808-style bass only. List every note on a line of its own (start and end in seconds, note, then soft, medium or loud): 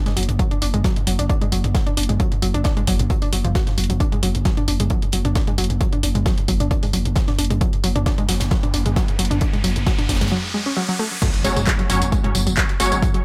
0.17 0.28 F#1 loud
0.29 0.39 F#1 medium
0.62 0.73 F#1 loud
0.74 0.84 F#1 medium
1.07 1.18 F#1 loud
1.19 1.29 F#1 medium
1.52 1.63 F#1 loud
1.64 1.74 F#1 medium
1.97 2.09 F#1 loud
2.09 2.20 F#1 medium
2.42 2.54 F#1 loud
2.54 2.65 F#1 medium
2.87 2.99 F#1 loud
2.99 3.10 F#1 medium
3.33 3.44 F#1 loud
3.44 3.55 F#1 medium
3.78 3.89 F#1 loud
3.90 4.00 F#1 medium
4.23 4.34 F#1 loud
4.35 4.45 F#1 medium
4.68 4.79 F#1 loud
4.80 4.90 F#1 medium
5.13 5.24 F#1 loud
5.25 5.35 F#1 medium
5.58 5.69 F#1 loud
5.70 5.80 F#1 medium
6.03 6.15 F#1 loud
6.15 6.26 F#1 medium
6.48 6.60 F#1 loud
6.60 6.71 F#1 medium
6.94 7.05 F#1 medium
7.05 7.16 F#1 medium
7.39 7.50 F#1 loud
7.50 7.61 F#1 medium
7.84 7.95 F#1 loud
7.96 8.06 F#1 medium
8.29 8.40 F#1 loud
8.41 8.51 F#1 medium
8.74 8.85 F#1 loud
8.86 8.96 F#1 medium
9.19 9.30 F#1 loud
9.31 9.41 F#1 medium
9.64 9.75 F#1 loud
9.76 9.86 F#1 medium
10.09 10.20 F#1 loud
10.21 10.32 F#1 medium
11.45 11.56 F#1 loud
11.56 11.67 F#1 medium
11.90 12.01 F#1 loud
12.01 12.12 F#1 medium
12.35 12.46 F#1 loud
12.47 12.57 F#1 medium
12.80 12.91 F#1 loud
12.92 13.02 F#1 medium